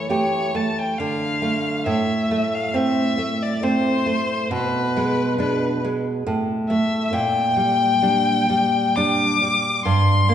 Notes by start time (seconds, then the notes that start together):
Already playing: E3
0.10 A3 G4 C#5
0.55 A3 A5
0.78 G5
0.98 D3 F5
1.42 A3
1.86 A2 E5
2.31 A3
2.54 F5
2.74 A3 C4 E5
3.18 A3
3.43 D5
3.63 A3 C4 C5
4.06 A3
4.51 B2 B4
4.97 G#3
5.38 G#3 D4 B4
5.85 G#3
6.27 A2
6.69 A3 E5
7.13 A#2 G5
7.57 G3
8.02 G3 D4
8.50 G3
8.96 G3 D4 D6
9.42 G3
9.85 G2 C6
10.29 A#3